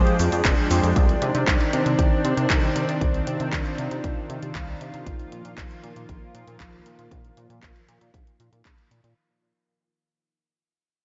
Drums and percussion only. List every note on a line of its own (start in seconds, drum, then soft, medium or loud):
0.07 closed hi-hat soft
0.19 open hi-hat loud
0.19 cabasa medium
0.32 closed hi-hat soft
0.32 cabasa soft
0.45 kick loud
0.45 clap loud
0.45 closed hi-hat medium
0.45 cabasa soft
0.71 open hi-hat medium
0.71 cabasa medium
0.84 closed hi-hat soft
0.84 cabasa soft
0.96 kick loud
0.96 closed hi-hat medium
1.09 closed hi-hat soft
1.22 closed hi-hat medium
1.35 closed hi-hat soft
1.47 kick loud
1.47 clap loud
1.47 closed hi-hat medium
1.61 closed hi-hat soft
1.73 closed hi-hat medium
1.86 closed hi-hat soft
1.99 kick loud
1.99 closed hi-hat medium
2.25 closed hi-hat medium
2.37 closed hi-hat soft
2.50 kick loud
2.50 clap loud
2.50 closed hi-hat medium
2.76 closed hi-hat medium
2.89 closed hi-hat soft
3.01 kick loud
3.01 closed hi-hat medium
3.14 closed hi-hat soft
3.27 closed hi-hat medium
3.40 closed hi-hat soft
3.53 kick loud
3.53 clap loud
3.53 closed hi-hat medium
3.66 closed hi-hat soft
3.78 closed hi-hat medium
3.91 closed hi-hat soft
4.04 kick loud
4.04 closed hi-hat medium
4.30 closed hi-hat medium
4.43 closed hi-hat soft
4.55 kick loud
4.55 clap loud
4.55 closed hi-hat medium
4.81 closed hi-hat medium
4.94 closed hi-hat soft
5.06 kick loud
5.06 closed hi-hat medium
5.19 closed hi-hat soft
5.32 closed hi-hat medium
5.45 closed hi-hat soft
5.58 kick loud
5.58 clap loud
5.58 closed hi-hat medium
5.71 closed hi-hat soft
5.84 closed hi-hat medium
5.96 closed hi-hat soft
6.09 kick loud
6.09 closed hi-hat medium
6.35 closed hi-hat medium
6.48 closed hi-hat soft
6.60 kick loud
6.60 clap loud
6.60 closed hi-hat medium
6.86 closed hi-hat medium
6.99 closed hi-hat soft
7.11 kick loud
7.11 closed hi-hat medium
7.24 closed hi-hat soft
7.37 closed hi-hat medium
7.50 closed hi-hat medium
7.63 kick loud
7.63 clap loud
7.63 closed hi-hat medium
7.76 closed hi-hat soft
7.89 closed hi-hat medium
8.01 closed hi-hat soft
8.14 kick loud
8.14 closed hi-hat medium
8.27 closed hi-hat soft
8.40 closed hi-hat medium
8.53 closed hi-hat soft
8.65 kick loud
8.65 clap loud
8.65 closed hi-hat medium
8.78 closed hi-hat soft
8.91 closed hi-hat medium
9.04 closed hi-hat soft